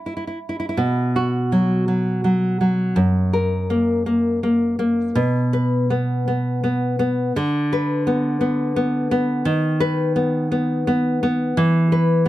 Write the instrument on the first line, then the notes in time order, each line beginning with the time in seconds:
nylon-string guitar
0.06 E4
0.17 E4
0.27 E4
0.49 E4
0.60 E4
0.69 E4
0.77 B2
1.16 F#4
1.52 F#3
1.88 F#3
2.24 F#3
2.61 F#3
2.96 F#2
3.33 A#4
3.70 A#3
4.06 A#3
4.43 A#3
4.79 A#3
5.15 B2
5.53 B4
5.90 B3
6.28 B3
6.64 B3
6.99 B3
7.36 D3
7.73 B4
8.07 B3
8.41 B3
8.76 B3
9.11 B3
9.45 D#3
9.80 B4
10.16 B3
10.52 B3
10.87 B3
11.23 B3
11.57 E3
11.92 B4